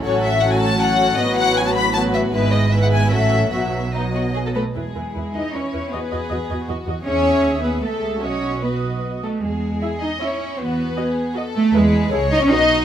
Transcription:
<<
  \new Staff \with { instrumentName = "Violin section" } { \time 3/4 \key e \major \tempo 4 = 156 cis''8 e''8 fis''16 gis''16 a''8 fis''4 | dis''8 fis''8 gis''16 a''16 b''8 a''8 e''8 | b'8 dis''8 e''16 fis''16 gis''8 e''4 | e''4 dis''4. r8 |
gis'4 e'2 | gis'2 fis'4 | gis'2 a'4 | fis'2~ fis'8 r8 |
r4 gis'4 e'4 | fis'4 gis'4 a'4 | b'4 cis''4 fis'4 | }
  \new Staff \with { instrumentName = "Violin section" } { \time 3/4 \key e \major <fis' a'>4 <fis' a'>4 <fis' a'>4 | <fis' b'>2 <fis' b'>4 | <e' b'>4 <e' b'>4 <fis' a'>4 | fis'4 dis'8 fis'8 gis'16 a'16 <a' b'>8 |
gis'4. dis''8 cis''4 | b'2 r4 | cis''4. b'8 a'4 | cis''4 b'4 r8 a'8 |
gis'4. dis''8 cis''4 | b'2 r8 a'8 | gis'4. dis''16 cis''16 dis''4 | }
  \new Staff \with { instrumentName = "Viola section" } { \time 3/4 \key e \major << { cis'4 cis'4 cis'4 | b2 b4 | b4 b4 cis'4 | b4 b4. r8 |
b'8 b'8 b'8 b'8 b'8 b'8 | dis''8 dis''8 dis''8 dis''8 dis''8 dis''8 | e''2 e''4 | dis''4 dis''4. r8 |
r4 e''4 e''4 | r4 dis''4 dis''4 | b'4 a'4 b'4 | } \\ { fis4 fis4 fis4 | fis2 fis4 | gis4 gis4 fis4 | fis4 fis4. r8 |
e'8 e'8 e'8 e'8 e'8 e'8 | fis'8 fis'8 fis'8 fis'8 fis'8 fis'8 | gis'2 a'8 gis'8 | fis'4 fis'4. r8 |
r4 e'4 e'4 | r4 fis'4 fis'4 | e'4 e'4 fis'4 | } >> }
  \new Staff \with { instrumentName = "Cello section" } { \time 3/4 \key e \major a,2. | a,2. | gis,2 a,4 | b,2~ b,8 a8 |
gis4. dis'8 cis'4 | b2 r4 | cis'4. b8 a4 | cis'4 b4 r8 a8 |
gis4. dis'8 cis'4 | b2 r8 a8 | gis4. dis'16 cis'16 dis'4 | }
  \new Staff \with { instrumentName = "Double bass section" } { \clef bass \time 3/4 \key e \major a,,2. | a,,2. | gis,,2 a,,4 | b,,2~ b,,8 r8 |
e,8 e,8 e,8 e,8 e,8 e,8 | e,8 e,8 e,8 e,8 e,8 e,8 | e,4 dis,4 cis,4 | b,,2~ b,,8 r8 |
e,4 r2 | e,4 r2 | e,4 cis,4 b,,4 | }
>>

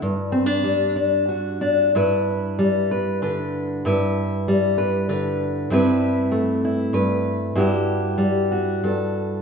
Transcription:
\new Staff \with { instrumentName = "Steel-string acoustic guitar" } { \time 3/4 \key g \major \tempo 4 = 96 << { r8 c'16 d'8. d'8 fis'8 d'8 | <e' b'>4. b'8 b'4 | <e' b'>4. b'8 b'4 | <c' e' b'>4. e'8 b'4 |
<e' fis' g'>4. fis'8 a'4 | } \\ { g,4 g2 | g,4 g4 d4 | g,4 g4 d4 | g,4 a4 g,4 |
g,4 g4 g,4 | } >> }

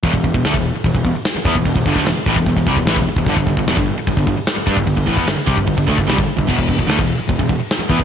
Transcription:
<<
  \new Staff \with { instrumentName = "Overdriven electric guitar" } { \clef bass \time 4/4 \key e \minor \tempo 4 = 149 <e, b,>16 <e, b,>16 <e, b,>16 <e, b,>16 <d a>16 <e, b,>8 r16 <e, b,>16 <e, b,>16 <e, b,>16 r8. <e b>16 <e, b,>16 | <e, b,>16 <e, b,>16 <g, d>16 <d a>16 <e, b,>16 r16 <a, e>16 <e, b,>16 <e, b,>16 <e, b,>16 <c g>16 <e, b,>16 <a, e>16 <e, b,>16 r16 <e, b,>16 | <g, d>16 <g, d>16 <g, d>16 <g, d>16 <e, b,>16 <g, d>8 r16 <g, d>16 <g, d>16 <g, d>16 r8. <g d'>16 <g, d>16 | <g, d>16 <g, d>16 <a, e>16 <e b>16 <g, d>16 r16 <c g>16 <g, d>16 <g, d>16 <g, d>16 <d a>16 <g, d>16 <c g>16 <g, d>16 r16 <g, d>16 |
<e, b,>16 <e, b,>16 <e, b,>16 <e, b,>16 <d a>16 <e, b,>8 r16 <e, b,>16 <e, b,>16 <e, b,>16 r8. <e b>16 <e, b,>16 | }
  \new Staff \with { instrumentName = "Overdriven electric guitar" } { \clef bass \time 4/4 \key e \minor <e, b,>16 <e, b,>16 <e, b,>16 <e, b,>16 <d a>16 <e, b,>8 r16 <e, b,>16 <e, b,>16 <e, b,>16 r8. <e b>16 <e, b,>16 | <e, b,>16 <e, b,>16 <g, d>16 <d a>16 <e, b,>16 r16 <a, e>16 <e, b,>16 <e, b,>16 <e, b,>16 <c g>16 <e, b,>16 <a, e>16 <e, b,>16 r16 <e, b,>16 | <g, d>16 <g, d>16 <g, d>16 <g, d>16 <e, b,>16 <g, d>8 r16 <g, d>16 <g, d>16 <g, d>16 r8. <g d'>16 <g, d>16 | <g, d>16 <g, d>16 <a, e>16 <e b>16 <g, d>16 r16 <c g>16 <g, d>16 <g, d>16 <g, d>16 <d a>16 <g, d>16 <c g>16 <g, d>16 r16 <g, d>16 |
<e, b,>16 <e, b,>16 <e, b,>16 <e, b,>16 <d a>16 <e, b,>8 r16 <e, b,>16 <e, b,>16 <e, b,>16 r8. <e b>16 e,16 | }
  \new Staff \with { instrumentName = "Picked electric bass" } { \clef bass \time 4/4 \key e \minor e,,16 e,,16 e,,16 e,,16 d,16 e,,8 r16 e,,16 e,,16 e,,16 r8. e,16 e,,16 | e,,16 e,,16 g,,16 d,16 e,,16 r16 a,,16 e,,16 e,,16 e,,16 c,16 e,,16 a,,16 e,,16 r16 e,,16 | g,,16 g,,16 g,,16 g,,16 e,,16 g,,8 r16 g,,16 g,,16 g,,16 r8. g,16 g,,16 | g,,16 g,,16 a,,16 e,16 g,,16 r16 c,16 g,,16 g,,16 g,,16 d,16 g,,16 c,16 g,,16 r16 g,,16 |
e,,16 e,,16 e,,16 e,,16 d,16 e,,8 r16 e,,16 e,,16 e,,16 r8. e,16 e,,16 | }
  \new DrumStaff \with { instrumentName = "Drums" } \drummode { \time 4/4 <hho bd>16 bd16 bd16 bd16 <hho sn>16 <bd sn>8. <hho bd>16 bd16 bd8 <hho sn>8 bd16 bd16 | <hho bd>16 bd16 bd16 bd16 <hho sn>8 bd16 bd16 <hho bd>16 bd16 bd16 bd16 <hho sn>16 bd8 bd16 | <hho bd>16 bd16 bd16 bd16 <hho sn>16 bd8. <hho bd>16 bd16 bd8 <hho sn>8 bd16 bd16 | <hho bd>16 bd16 bd16 bd16 <hho sn>16 sn16 bd16 bd16 <hho bd>16 bd16 bd16 bd16 <hho sn>16 bd8 bd16 |
<cymc bd>16 bd16 bd16 bd16 <hho sn>16 <bd sn>8. <hho bd>16 bd16 bd8 <hho sn>8 bd16 bd16 | }
>>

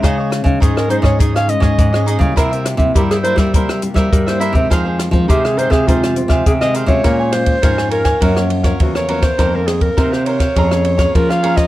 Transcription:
<<
  \new Staff \with { instrumentName = "Cavaquinho" } { \time 4/4 \key f \minor \tempo 4 = 103 <ees' aes' des'' ees''>16 <aes' des'' ees''>16 r8 <ees' aes' des'' ees''>16 <aes' des'' ees''>16 <ees' aes' des'' ees''>16 <aes' des'' ees''>16 <ees' aes' des'' ees''>16 <aes' des'' ees''>16 r16 <aes' des'' ees''>8 <aes' des'' ees''>16 <ees' aes' des'' ees''>16 <aes' des'' ees''>16 | <e' bes' c'' e''>16 <bes' c'' e''>16 r8 <e' bes' c'' e''>16 <bes' c'' e''>16 <e' bes' c'' e''>16 <bes' c'' e''>16 <e' bes' c'' e''>16 <bes' c'' e''>16 r16 <bes' c'' e''>8 <bes' c'' e''>16 <e' bes' c'' e''>16 <bes' c'' e''>16 | <ees' aes' c'' f''>16 <aes' c'' f''>16 r8 <ees' aes' c'' f''>16 <aes' c'' f''>16 <ees' aes' c'' f''>16 <aes' c'' f''>16 <ees' aes' c'' f''>16 <aes' c'' f''>16 r16 <aes' c'' f''>8 <aes' c'' f''>16 <ees' aes' c'' f''>16 <aes' c'' f''>16 | \key bes \minor <bes' des'' f'' aes''>16 <des'' f'' aes''>16 r8 <bes' des'' f'' aes''>16 <des'' f'' aes''>16 <bes' des'' f'' aes''>16 <des'' f'' aes''>16 <ges' bes' des'' f''>16 <bes' des'' f''>16 r16 <bes' des'' f''>8 <bes' des'' f''>16 <ges' bes' des'' f''>16 <bes' des'' f''>16 |
<ees' bes' c'' f''>16 <bes' c'' f''>16 r8 <ees' bes' c'' f''>16 <bes' c'' f''>16 <ees' bes' c'' f''>16 <bes' c'' f''>16 <aes' des'' f'' bes''>16 <des'' f'' bes''>16 r16 <des'' f'' bes''>8 <des'' f'' bes''>16 <aes' des'' f'' bes''>16 <des'' f'' bes''>16 | }
  \new Staff \with { instrumentName = "Clarinet" } { \time 4/4 \key f \minor r4 aes'16 bes'16 c''16 des''8 f''16 ees''4 r8 | r4 g'16 aes'16 c''8 r4 bes'16 c''16 e''8 | r4 g'16 aes'16 c''16 aes'16 f'4 aes'16 ees''8 des''16~ | \key bes \minor des''8 c''4 bes'4 r8 ges'16 des''8 c''16~ |
c''16 bes'16 aes'16 bes'8 c''16 des''4. bes'16 f''8 ees''16 | }
  \new Staff \with { instrumentName = "Nylon-string guitar" } { \time 4/4 \key f \minor << { <aes des' ees'>8. <aes des' ees'>8. <aes des' ees'>8 <aes des' ees'>8 <aes des' ees'>8. <aes des' ees'>8 <g bes e'>16~ | <g bes e'>8. <g bes e'>8. <g bes e'>8 <g bes e'>16 r16 <g bes e'>8. <g bes e'>8 <ees aes c'>16~ | <ees aes c'>8. <ees aes c'>8. <ees aes c'>8 <ees aes c'>8 <ees aes c'>8. <ees aes c'>8 <aes des' f'>16~ | \key bes \minor <aes des' f'>8 <aes des' f'>8 <aes des' f'>8. r16 <f bes des'>16 <f bes des'>8 <f bes des'>16 <f bes des'>8 <f bes des'>16 r16 |
<ees bes c'>16 <ees bes c'>16 <ees bes c'>8 <ees bes c'>8. r16 <bes des' aes'>16 <bes des' aes'>8 <bes des' aes'>16 <bes des' aes'>8 <bes des' aes'>16 r16 | } \\ { des4 aes,4 des4 aes,4 | c4 g,4 c4 g,4 | f,4 c4 f,4 c4 | bes,4 f,4 ges,4 des4 |
f,4 c4 f4 f4 | } >> }
  \new Staff \with { instrumentName = "Nylon-string guitar" } { \clef bass \time 4/4 \key f \minor des8. des16 aes,8. aes,4 aes,16 aes,8. des16 | c8. c16 g8. g4 g16 g8. c16 | f8. f16 c8. c4 c16 c8. c16 | \key bes \minor bes,4 aes,4 ges,4 e,4 |
f,4 c4 f,4 f4 | }
  \new DrumStaff \with { instrumentName = "Drums" } \drummode { \time 4/4 <hh bd ss>8 <hh ss>16 <hh bd>16 <hh bd>16 ss16 hh16 <bd ss>16 <hh bd>16 <hh ss>16 hh16 <hh bd ss>16 <hh bd>16 ss16 hh16 <hh bd>16 | <hh bd ss>16 hh16 <hh ss>16 <hh bd>16 <hh bd>16 <hh ss>16 hh16 <hh bd ss>16 <hh bd>16 ss16 hh16 <hh bd ss>16 <hh bd>16 <hh ss>16 hh16 <hh bd>16 | <hh bd ss>8 <hh ss>16 <hh bd>16 <hh bd>16 ss16 hh16 <bd ss>16 <hh bd>16 <hh ss>16 hh16 <hh bd ss>16 <hh bd>16 ss16 hh16 <hh bd>16 | <bd cymr ss>8 <cymr ss>16 <bd cymr>16 <bd cymr ss>16 ss16 cymr16 <bd cymr ss>16 <bd cymr>16 ss16 cymr16 <bd cymr ss>16 <bd cymr>16 ss16 cymr16 <bd cymr ss>16 |
<bd cymr ss>8 <cymr ss>16 <bd cymr>16 <bd cymr ss>16 ss16 cymr16 <bd cymr ss>16 <bd cymr>16 ss16 cymr16 <bd cymr ss>16 <bd cymr>16 ss16 cymr16 <bd cymr ss>16 | }
>>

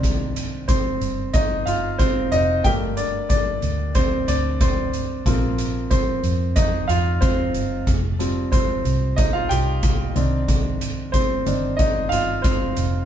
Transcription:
<<
  \new Staff \with { instrumentName = "Grand piano" } { \time 4/4 \key f \mixolydian \tempo 4 = 92 r4 <c' c''>4 <ees' ees''>8 <f' f''>8 <c' c''>8 <ees' ees''>8 | <g' g''>8 <d' d''>8 <d' d''>4 <c' c''>8 <d' d''>8 <c' c''>8. r16 | r4 <c' c''>4 <ees' ees''>8 <f' f''>8 <c' c''>8. r16 | r4 <c' c''>4 <ees' ees''>16 <f' f''>16 <g' g''>4 r8 |
r4 <c' c''>4 <ees' ees''>8 <f' f''>8 <c' c''>8. r16 | }
  \new Staff \with { instrumentName = "Grand piano" } { \time 4/4 \key f \mixolydian <ees c' d'>8 r2. r8 | <g a bes>1 | <f bes c'>4. r2 r8 | r8 <f g c'>8 r2 r8 <ees c' d'>8 |
r4. <ees c' d'>8 r2 | }
  \new Staff \with { instrumentName = "Fingered electric bass" } { \clef bass \time 4/4 \key f \mixolydian c,4. g,,4 g,,4 f,,8 | g,,4. d,4 d,4. | bes,,4. f,4 f,4 g,,8 | f,,4. c,4 c,4 c,8~ |
c,4. g,,4 g,,4 f,,8 | }
  \new DrumStaff \with { instrumentName = "Drums" } \drummode { \time 4/4 <hh bd>8 hh8 <hh bd>8 hh8 <hh bd>8 hh8 <hh bd>8 hh8 | <hh bd>8 hh8 <hh bd>8 hh8 <hh bd>8 hh8 <hh bd>8 hh8 | <hh bd>8 hh8 <hh bd>8 hh8 <hh bd>8 hh8 <hh bd>8 hh8 | <hh bd>8 hh8 <hh bd>8 hh8 <hh bd>8 hh8 <hh bd>8 hh8 |
<hh bd>8 hh8 <hh bd>8 hh8 <hh bd>8 hh8 <hh bd>8 hh8 | }
>>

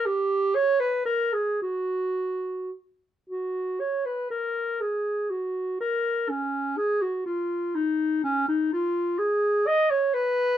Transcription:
\new Staff \with { instrumentName = "Clarinet" } { \time 3/4 \key fis \major \tempo 4 = 121 g'4 cis''8 b'8 ais'8 gis'8 | fis'2 r4 | \key aes \dorian ges'4 des''8 ces''8 bes'4 | aes'4 ges'4 bes'4 |
des'4 aes'8 ges'8 f'4 | ees'4 des'8 ees'8 f'4 | \key b \lydian gis'4 dis''8 cis''8 b'4 | }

